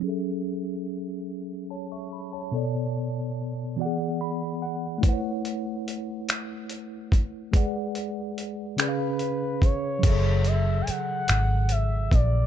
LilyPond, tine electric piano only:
\new Staff \with { instrumentName = "Tine electric piano" } { \time 6/8 \key fis \minor \tempo 4. = 48 << { r2 <cis'' a''>16 <e'' cis'''>16 b''16 <cis'' a''>16~ | <cis'' a''>16 r4. r16 b''8 fis''8 | r2. | r2. |
r2. | } \\ { <fis cis' gis' a' e''>2. | <b, b a' cis'' d''>4. <e b fis' gis' d'' fis''>4. | <a e' b' bis' cis'' fis''>2. | <gis gis' b' d'' fis''>4. <cis cis' gis' b' d'' eis''>4. |
<cis fis gis' a' e''>2. | } >> }